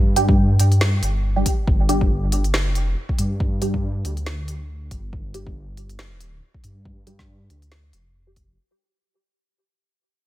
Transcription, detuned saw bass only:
0.00 0.58 G2 medium
0.60 1.01 G2 loud
1.03 1.44 G1 medium
1.68 2.58 G1 loud
2.58 2.84 F#1 loud
2.84 2.95 F1 loud
3.19 4.03 G2 loud
4.05 4.90 D2 loud
4.91 5.11 G1 medium
5.13 6.41 G1 loud
6.64 7.49 G2 medium
7.50 7.92 D2 loud
7.94 8.57 F1 medium

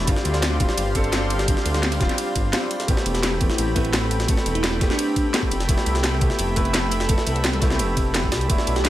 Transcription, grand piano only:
0.00 0.10 E4 loud
0.00 0.10 A4 loud
0.06 0.57 G3 medium
0.06 0.58 C4 medium
0.06 0.58 D4 medium
0.06 0.59 F4 loud
0.60 0.93 G3 medium
0.60 0.93 C4 medium
0.60 0.93 D4 medium
0.60 0.94 F4 loud
0.95 1.00 G3 medium
0.95 1.00 C4 medium
0.95 1.01 D4 medium
0.95 1.01 A4 loud
1.47 1.98 G3 medium
1.47 1.98 C4 medium
1.47 1.99 D4 medium
1.47 1.99 G4 medium
1.99 2.51 G3 loud
1.99 2.51 C4 medium
1.99 2.52 D4 medium
1.99 2.52 F4 loud
2.53 2.58 G3 medium
2.53 2.58 C4 medium
2.53 2.59 D4 medium
2.53 2.59 F4 medium
2.87 3.38 A3 medium
2.87 3.39 B3 medium
2.87 3.39 C4 medium
2.87 3.40 G4 loud
3.40 3.74 A3 medium
3.40 3.74 B3 medium
3.40 3.74 C4 medium
3.40 3.74 G4 medium
3.75 3.81 A3 medium
3.75 3.81 B3 medium
3.75 3.81 C4 medium
3.75 3.82 B4 loud
4.27 4.78 A3 medium
4.27 4.79 B3 medium
4.27 4.79 C4 medium
4.27 4.80 A4 medium
4.80 5.31 A3 loud
4.80 5.32 B3 medium
4.80 5.32 C4 medium
4.80 5.33 G4 loud
5.33 5.39 A3 medium
5.33 5.39 B3 medium
5.33 5.39 C4 medium
5.33 5.39 G4 medium
5.68 6.19 A3 medium
5.68 6.19 B3 medium
5.68 6.20 E4 medium
5.68 6.20 G4 loud
6.21 6.54 A3 medium
6.21 6.55 B3 medium
6.21 6.55 E4 medium
6.21 6.55 G4 loud
6.56 6.62 A3 medium
6.56 6.62 B3 medium
6.56 6.62 E4 medium
6.56 6.62 B4 loud
7.08 7.59 A3 medium
7.08 7.60 B3 medium
7.08 7.60 E4 medium
7.08 7.61 A4 medium
7.61 8.12 A3 loud
7.61 8.12 B3 medium
7.61 8.13 E4 medium
7.61 8.13 G4 loud
8.14 8.19 A3 medium
8.14 8.20 B3 medium
8.14 8.20 E4 medium
8.14 8.20 G4 medium
8.48 8.89 A3 medium
8.48 8.89 B3 medium
8.48 8.89 D4 medium
8.48 8.89 E4 medium

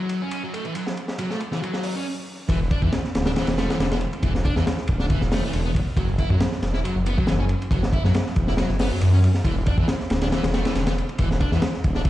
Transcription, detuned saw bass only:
2.49 2.75 E1 loud
2.82 2.89 E2 medium
3.15 3.36 D1 medium
3.36 3.46 E1 soft
3.48 3.69 E1 medium
3.70 3.78 E1 soft
3.80 4.06 E1 loud
4.23 4.49 E1 loud
4.57 4.63 E2 medium
4.89 5.15 D1 medium
5.21 5.43 E1 medium
5.43 5.52 E1 soft
5.54 5.80 E1 loud
5.97 6.23 F#1 loud
6.30 6.37 F#2 medium
6.62 6.83 E1 medium
6.84 6.93 F#1 soft
6.95 7.18 F#1 medium
7.18 7.26 F#1 soft
7.28 7.54 F#1 loud
7.71 7.97 F#1 loud
8.04 8.11 F#2 medium
8.37 8.62 E1 medium
8.70 8.91 F#1 medium
8.92 9.00 F#2 soft
9.02 9.28 F#2 loud
9.45 9.71 E1 loud
9.78 9.84 E2 medium
10.10 10.31 D1 medium
10.32 10.41 E1 soft
10.44 10.65 E1 medium
10.65 10.73 E1 soft
10.76 11.02 E1 loud
11.19 11.45 E1 loud
11.52 11.58 E2 medium
11.84 12.10 D1 medium

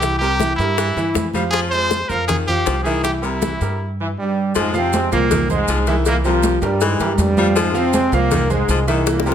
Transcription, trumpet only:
0.00 0.17 G4 loud
0.18 0.55 G4 loud
0.56 1.29 E4 medium
1.50 1.60 G#4 loud
1.70 2.10 C5 loud
2.09 2.27 A#4 medium
2.27 2.36 G#4 medium
2.46 2.82 G4 medium
2.83 3.02 G#4 medium
3.03 3.12 G4 medium
3.22 3.94 E4 medium

